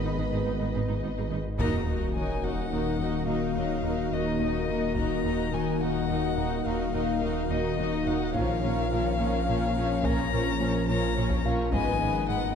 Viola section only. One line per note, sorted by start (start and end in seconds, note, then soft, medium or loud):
0.05 0.10 D#4 soft
0.18 0.24 B3 soft
0.18 0.24 D#4 soft
0.33 0.39 D#4 soft
0.33 0.39 G#4 soft
0.47 0.52 D#4 soft
0.60 0.66 B3 soft
0.60 0.66 D#4 soft
0.75 0.80 D#4 soft
0.75 0.80 G#4 soft
0.89 0.94 D#4 soft
1.03 1.08 B3 soft
1.03 1.08 D#4 soft
1.17 1.23 D#4 soft
1.17 1.23 G#4 soft
1.31 1.37 D#4 soft
1.59 1.85 D#4 medium
1.59 1.85 F#4 medium
1.87 2.14 D#4 soft
1.87 2.14 F#4 soft
2.15 2.42 D#4 soft
2.15 2.42 F#4 soft
2.43 2.70 D#4 soft
2.43 2.70 F#4 soft
2.71 2.98 D#4 soft
2.71 2.98 F#4 soft
2.99 3.27 D#4 soft
2.99 3.26 F#4 soft
3.28 3.54 D#4 soft
3.28 3.54 F#4 soft
3.56 3.83 D#4 soft
3.56 3.83 F#4 soft
3.84 4.11 D#4 soft
3.84 4.11 F#4 soft
4.12 4.40 D#4 soft
4.12 4.39 F#4 soft
4.40 4.68 D#4 soft
4.40 4.68 F#4 soft
4.69 4.96 D#4 soft
4.69 4.96 F#4 soft
4.97 5.23 D#4 soft
4.97 5.23 F#4 soft
5.25 5.52 D#4 soft
5.25 5.52 F#4 soft
5.53 5.80 D#4 soft
5.53 5.80 F#4 soft
5.81 6.08 D#4 soft
5.81 6.08 F#4 soft
6.09 6.36 D#4 soft
6.09 6.36 F#4 soft
6.37 6.64 D#4 soft
6.37 6.64 F#4 soft
6.65 6.92 D#4 soft
6.65 6.92 F#4 soft
6.93 7.20 D#4 soft
6.93 7.20 F#4 soft
7.21 7.48 D#4 soft
7.21 7.48 F#4 soft
7.49 7.76 D#4 soft
7.49 7.76 F#4 soft
7.77 8.04 D#4 soft
7.77 8.04 F#4 soft
8.05 8.34 D#4 soft
8.05 8.34 F#4 soft
8.34 8.61 F3 medium
8.34 8.61 C#4 medium
8.62 8.89 F3 soft
8.62 8.89 C#4 soft
8.90 9.18 F3 soft
8.90 9.18 C#4 soft
9.19 9.46 F3 medium
9.19 9.46 C#4 medium
9.47 9.74 F3 medium
9.47 9.74 C#4 medium
9.75 10.03 F3 soft
9.75 10.03 C#4 medium
10.04 10.31 F3 medium
10.04 10.31 C#4 medium
10.32 10.59 F3 medium
10.32 10.59 C#4 soft
10.60 10.87 F3 soft
10.60 10.87 C#4 soft
10.88 11.15 F3 medium
10.88 11.15 C#4 medium
11.16 11.43 F3 soft
11.16 11.43 C#4 medium
11.44 11.72 F3 medium
11.44 11.72 C#4 medium
11.72 11.99 G#3 medium
11.72 11.99 B3 medium
12.00 12.28 G#3 soft
12.00 12.28 B3 medium
12.29 12.55 G#3 soft
12.29 12.55 B3 soft